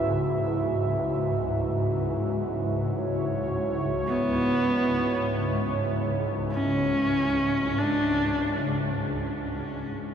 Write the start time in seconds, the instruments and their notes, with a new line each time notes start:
Already playing: synth drone C#2 G#2, analog synth pad E4 F#4 B4 E5, singing bowl F#4
2.76 analog synth pad C#5
4.08 horsehead fiddle B3
6.52 horsehead fiddle C#4
7.78 horsehead fiddle D4
9.02 synth drone C#2, horsehead fiddle C#4, singing bowl G#4